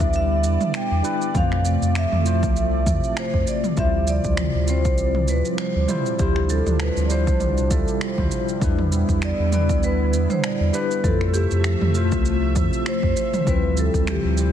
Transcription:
Already playing: D3 G3 B3 D4 E4 B4 D5 E5
0.00 D2, kick, shaker
0.13 E5, shaker
0.44 E2, shaker
0.61 mid tom, shaker
0.74 G5, finger snap, shaker
0.91 E2
1.03 G3 D4 E4 B4, shaker
1.22 shaker
1.33 F2 C3 F3 A3 C4 F4 C5 F5, kick, mid tom, shaker
1.52 finger snap
1.65 shaker
1.82 F2, shaker
1.95 E5, finger snap, shaker
2.12 F2, mid tom
2.23 A3 E4 F4, shaker
2.27 C5
2.43 C2, kick, shaker
2.56 shaker
2.87 F2, kick, mid tom, shaker
3.04 shaker
3.17 C5, finger snap, shaker
3.34 F2, kick
3.47 D5, shaker
3.64 mid tom, shaker
3.76 D2 F3 G3 E4 F4 E5, kick, shaker
3.80 C5
4.07 D5, shaker
4.24 D2, kick, shaker
4.37 finger snap, mid tom, shaker
4.55 D2
4.66 G3 C4 E4 F4 C5, shaker
4.85 C2, kick, shaker
4.98 shaker
5.15 mid tom
5.28 D2 B4, shaker
5.45 shaker
5.58 C5, finger snap, shaker
5.76 D2
5.88 G3 E4 F4 C5, mid tom, shaker
6.06 shaker
6.18 D2 G3 D4 E4 F4 G4, kick, shaker
6.22 C5
6.36 finger snap
6.49 A4, shaker
6.66 D2, mid tom, shaker
6.80 B4, finger snap, shaker
6.97 D2, shaker
7.05 D5
7.09 G3 E4 F4 C5, shaker
7.27 C2, kick, shaker
7.40 mid tom, shaker
7.57 shaker
7.70 D2 G3 E4 F4 A4 E5, kick, shaker
7.88 shaker
8.01 G3 E4 F4 C5 D5, finger snap, shaker
8.18 D2 G3 E4 F4 C5, kick, mid tom
8.31 shaker
8.48 shaker
8.60 E2 D3 G3 B3 D4 E4, kick, shaker
8.64 B4
8.79 mid tom
8.92 shaker
9.09 E2, kick, shaker
9.22 D5, finger snap, shaker
9.39 E2
9.51 G3 D4 E4 B4 D5, mid tom, shaker
9.69 D2, kick, shaker
9.83 B4, shaker
10.13 E2, shaker
10.30 C5, mid tom, shaker
10.44 finger snap, shaker
10.60 E2
10.73 G3 D4 E4 B4, shaker
10.91 shaker
11.02 F2 C3 F3 A3 E4 F4 A4 E5, kick, mid tom, shaker
11.07 C5
11.21 finger snap
11.28 A4
11.34 G4, shaker
11.51 F2, shaker
11.64 finger snap, shaker
11.81 F2, mid tom
11.93 A3 F4 C5 E5, shaker
12.12 C2, kick, shaker
12.25 shaker
12.56 F2, kick, mid tom, shaker
12.73 shaker
12.86 C5, finger snap, shaker
13.03 F2, kick
13.17 shaker
13.34 mid tom, shaker
13.44 D2 G3 E4 F4, kick, shaker
13.48 C4 B4
13.77 A4, shaker
13.94 D2, kick, shaker
14.07 G4, finger snap, mid tom, shaker
14.24 D2
14.36 F3 G3 E4, shaker
14.40 C5

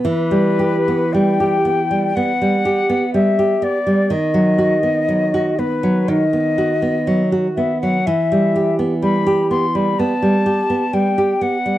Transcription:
0.04 E3 B4
0.31 G3
0.59 G4
0.88 B3
1.13 G3 G5
1.40 G4
1.65 B3
1.91 G3
2.15 B3 F#5
2.41 G3
2.65 G4
2.90 B3
3.14 G3 E5
3.39 G4
3.62 B3 D5
3.87 G3
4.10 D#3 D#5
4.34 F#3
4.58 F#4
4.83 B3
5.08 F#3
5.34 F#4
5.59 B3 B4
5.83 F#3
6.08 D#3 D#5
6.33 B3
6.58 F#4
6.82 B3
7.07 F#3
7.32 F#4
7.56 B3 E5
7.81 F#3 F#5
8.06 E3 E5
8.32 G3
8.56 G4
8.79 B3
9.02 G3 B5
9.27 G4
9.50 B3 C6
9.75 G3 B5
9.99 B3 A5
10.22 G3
10.46 G4
10.70 B3
10.93 G3 G5
11.18 G4
11.41 B3 F#5
11.66 G3

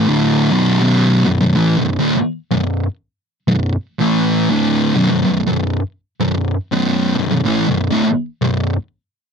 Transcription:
0.07 D2 A2 D3
0.51 B1 F#2 B2
0.81 B1 F#2 B2
1.26 B1 F#2
1.40 B1 F#2
1.55 A2 E3
1.78 B1 F#2
1.99 D2 A2
2.15 muted distorted electric guitar stroke
2.51 B1 F#2
3.48 B1 F#2
3.99 A2 E3 A3
4.51 D2 A2 D3
4.95 B1 F#2
5.10 B1 F#2
5.25 B1 F#2
5.47 B1 F#2
6.20 B1 F#2
6.72 B1 F#2 B2
7.16 B1 F#2
7.31 B1 F#2
7.46 A2 E3
7.68 B1 F#2
7.91 D2 A2
8.05 muted distorted electric guitar stroke
8.42 B1 F#2

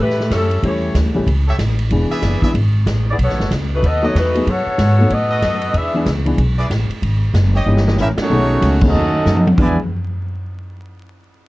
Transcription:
Already playing: A2
0.01 A3 E4 G4 B4
0.10 snare
0.20 snare
0.30 F#2 C#4 E4 G4 A4, kick, snare, hi-hat pedal, ride
0.51 ride
0.62 E2 E3 G3 A3 C#4 E4 G4 C#5, kick, ride
0.94 D2, kick, snare, hi-hat pedal, ride
1.05 C#2
1.15 A1 E3 G3 A3 C#4 G4
1.26 C#2, kick, ride
1.48 G4 A4 C#5 E5
1.58 A1, kick, snare, hi-hat pedal, ride
1.79 ride
1.90 E1 E3 G#3 B3 D4 G#4, kick, ride
2.10 G#4 B4 D5 E5, muted upright bass stroke
2.22 F#1, kick, snare, hi-hat pedal, ride
2.42 E3 G#3 B3 D4 E4 G#4 B4 D5 E5, muted upright bass stroke, kick
2.54 G#1, kick, ride
2.86 A1, kick, snare, hi-hat pedal, ride
3.10 B3 E4 G#4 D5
3.18 B1, kick, ride
3.23 B3 F#4 A4 C#5
3.29 A1, snare
3.39 F#1, snare
3.51 C#2, kick, snare, hi-hat pedal, ride
3.75 A3 D#4 F#4 B4
3.82 D#2 B3 F#4 A4 D#5, kick, ride
4.02 F#3 A3 B3 D#4 F#4 A4 B4 C#5 D#5
4.15 E2 A3 D#4 F#4 B4, kick, snare, hi-hat pedal, ride
4.35 F#3 A3 B3 D#4 G#4, ride
4.47 F#2 B3 F#4 A4 C#5, kick, ride
4.66 muted upright bass stroke
4.78 G#2, kick, snare, hi-hat pedal, ride
4.98 F#3 A3 B3 D#4 A4
5.10 A2 B3 F#4 A4 D#5, kick, ride
5.30 F#4 A4 B4 D#5
5.42 F#2, kick, snare, hi-hat pedal, ride
5.61 ride
5.73 E2 D4 G#4 B4 E5, kick, ride
5.94 E3 G#3 B3 D4 G#4
6.06 C#2, kick, snare, hi-hat pedal, ride
6.26 E3 G#3 B3 D4 G#4, ride
6.38 B1, kick, ride
6.58 E4 G#4 B4 D5
6.70 A1, kick, snare, hi-hat pedal, ride
6.89 muted upright bass stroke, ride
7.02 G#1, kick, ride
7.33 F#1, kick, snare, hi-hat pedal, ride
7.55 G4 C#5 D#5
7.66 G1 E3 A#3 C#4 D#4 G4
7.77 snare
7.88 snare
7.98 A1 A#3 C#4 E4 G4 E5, snare, hi-hat pedal
8.02 A#4
8.17 F#3 A3 C#4, muted upright bass stroke, snare, ride
8.21 A3 D#4 F#4 C#5
8.30 B1 D#3 A3 B3 C#4 G#4
8.62 C#2, kick, hi-hat pedal, ride
8.81 D#3 F#3 A3 B3 C#4 D#4 G#4, kick, crash
8.87 C#4 F#4 A4 D#5
8.93 D#2
9.25 F#2, snare, hi-hat pedal
9.37 high tom
9.47 high tom
9.58 E2 E3 G#3 B3 D4 E4 G#4 B4 D5 G#5, kick, floor tom, crash

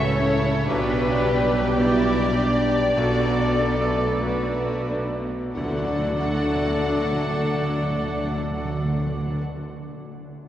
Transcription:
Already playing: A1 C#2 A2 C#3 A3 C#4 F#4 A4 B4 C#5 E5
0.14 A3 C#4 E4 A4 C#5
0.67 B1 B2 G3 D4 G4 B4 D5
1.24 G3 D4 G4 D5
1.78 B1 B2 E4 G4 D5
2.37 G3 D4 D5
2.95 B1 B2 A3 B3 F#4 A4 D5
3.57 A3 D4 A4 B4 D5
4.21 B1 B2 B3 F#4 B4
4.89 A3 D4 D5
5.54 D2 D3 F#3 A3 D4 F#4 A4 D5 F#5, tam-tam
5.63 D3
5.70 D3 A3
5.78 D3 D4
5.85 D3 D5
5.92 D3
5.99 D3
6.06 D3
6.13 D3
6.20 D3
6.27 D3
6.35 D3
6.49 D3
6.56 D3
6.63 D3
6.70 D3
6.76 D3
6.83 D3
6.89 D3
6.96 D3
7.11 D3
7.18 D3
7.25 D3
7.32 D3
7.40 D3
7.47 D3
7.54 D3
7.62 D3
7.68 D3
7.76 D3
7.83 D3
7.90 D3
7.96 D3
8.03 D3
8.10 D3
8.17 D3
8.24 D3
8.31 D3
8.37 D3
8.44 D3
8.51 D3
8.58 D3
8.65 D3
8.72 D3
8.79 D3
8.85 D3
8.92 D3
8.99 D3
9.05 D3
9.12 D3
9.20 D3
9.27 D3
9.34 D3

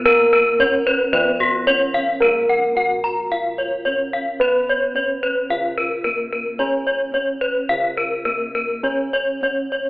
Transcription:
Already playing: A#2
0.05 A#3 A#4
0.33 A#4
0.59 B3 C#4 C#5
0.87 B4
1.12 F3 B3 B4
1.40 F#4
1.67 B3 C#4 C#5
1.94 F5
2.20 A#3 A#4
2.26 A#1
2.49 F#5
2.75 B3 F#4 F#5
3.04 A#5
3.31 F4 F5
3.58 C#5
3.85 B3 C#4 C#5
4.13 F5
4.40 B3 B4
4.69 C#5
4.95 B3 C#4 C#5
5.23 B4
5.50 C#3 F4 F5
5.78 A#4
6.04 A#3 B3 A#4
6.32 A#4
6.58 C#4 C#5
6.87 C#5
7.12 B3 C#4 C#5
7.41 B4
7.69 C#3 F4 F5
7.98 A#4
8.25 A#3 B3 A#4
8.55 A#4
8.83 C#4 C#5
9.13 C#5
9.41 B3 C#4 C#5
9.72 C#5

